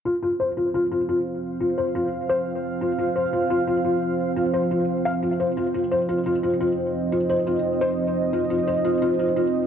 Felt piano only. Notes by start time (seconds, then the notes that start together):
0.05 F4
0.23 F4
0.40 C5
0.57 F4
0.74 F4
0.92 F4
1.09 F4
1.60 F4
1.78 C5
1.95 F4
2.29 C5
2.81 F4
2.98 F4
3.16 C5
3.33 F4
3.50 F4
3.67 F4
3.85 F4
4.36 F4
4.54 C5
4.71 F4
5.05 F5
5.23 F4
5.40 C5
5.57 F4
5.74 F4
5.91 C5
6.09 F4
6.26 F4
6.43 F4
6.60 F4
7.12 F4
7.29 C5
7.47 F4
7.81 C5
8.33 F4
8.50 F4
8.67 C5
8.85 F4
9.02 F4
9.19 F4
9.36 F4